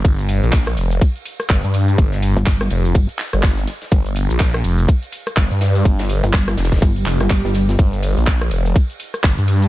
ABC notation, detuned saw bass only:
X:1
M:4/4
L:1/16
Q:"Swing 16ths" 1/4=124
K:Fmix
V:1 name="Detuned saw bass" clef=bass
G,,,3 B,,,3 F,,,2 z4 G,,, G,,3 | G,,,3 z3 F,,,2 z3 G,,,3 z2 | G,,,3 B,,,3 F,,,2 z4 G,,, G,,3 | G,,,3 z3 F,,,2 z2 F,,, z4 z |
G,,,3 B,,,3 F,,,2 z4 G,,, G,,3 |]